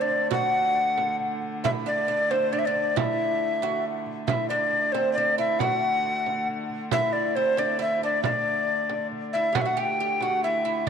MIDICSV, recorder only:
0, 0, Header, 1, 2, 480
1, 0, Start_track
1, 0, Tempo, 439883
1, 336, Time_signature, 6, 3, 24, 8
1, 11886, End_track
2, 0, Start_track
2, 0, Title_t, "Recorder"
2, 0, Program_c, 0, 74
2, 17, Note_on_c, 0, 74, 94
2, 343, Note_off_c, 0, 74, 0
2, 351, Note_on_c, 0, 78, 93
2, 1266, Note_off_c, 0, 78, 0
2, 1793, Note_on_c, 0, 76, 95
2, 1859, Note_off_c, 0, 76, 0
2, 2046, Note_on_c, 0, 74, 77
2, 2518, Note_on_c, 0, 72, 86
2, 2535, Note_off_c, 0, 74, 0
2, 2758, Note_on_c, 0, 74, 82
2, 2774, Note_off_c, 0, 72, 0
2, 2824, Note_on_c, 0, 76, 67
2, 2840, Note_off_c, 0, 74, 0
2, 2898, Note_on_c, 0, 74, 85
2, 2914, Note_off_c, 0, 76, 0
2, 3241, Note_on_c, 0, 76, 78
2, 3258, Note_off_c, 0, 74, 0
2, 4200, Note_off_c, 0, 76, 0
2, 4661, Note_on_c, 0, 76, 80
2, 4892, Note_off_c, 0, 76, 0
2, 4900, Note_on_c, 0, 74, 76
2, 5372, Note_on_c, 0, 72, 82
2, 5388, Note_off_c, 0, 74, 0
2, 5594, Note_off_c, 0, 72, 0
2, 5600, Note_on_c, 0, 74, 76
2, 5841, Note_off_c, 0, 74, 0
2, 5879, Note_on_c, 0, 76, 88
2, 6104, Note_on_c, 0, 78, 97
2, 6120, Note_off_c, 0, 76, 0
2, 7070, Note_off_c, 0, 78, 0
2, 7554, Note_on_c, 0, 76, 98
2, 7778, Note_on_c, 0, 74, 87
2, 7794, Note_off_c, 0, 76, 0
2, 8026, Note_on_c, 0, 72, 80
2, 8042, Note_off_c, 0, 74, 0
2, 8282, Note_on_c, 0, 74, 93
2, 8298, Note_off_c, 0, 72, 0
2, 8517, Note_off_c, 0, 74, 0
2, 8524, Note_on_c, 0, 76, 79
2, 8741, Note_off_c, 0, 76, 0
2, 8775, Note_on_c, 0, 74, 81
2, 8980, Note_off_c, 0, 74, 0
2, 8987, Note_on_c, 0, 74, 84
2, 9901, Note_off_c, 0, 74, 0
2, 10182, Note_on_c, 0, 76, 82
2, 10423, Note_on_c, 0, 78, 83
2, 10439, Note_off_c, 0, 76, 0
2, 10492, Note_on_c, 0, 76, 68
2, 10509, Note_off_c, 0, 78, 0
2, 10547, Note_on_c, 0, 78, 79
2, 10563, Note_off_c, 0, 76, 0
2, 10699, Note_on_c, 0, 79, 72
2, 10716, Note_off_c, 0, 78, 0
2, 11157, Note_on_c, 0, 78, 82
2, 11173, Note_off_c, 0, 79, 0
2, 11381, Note_off_c, 0, 78, 0
2, 11388, Note_on_c, 0, 76, 74
2, 11880, Note_off_c, 0, 76, 0
2, 11886, End_track
0, 0, End_of_file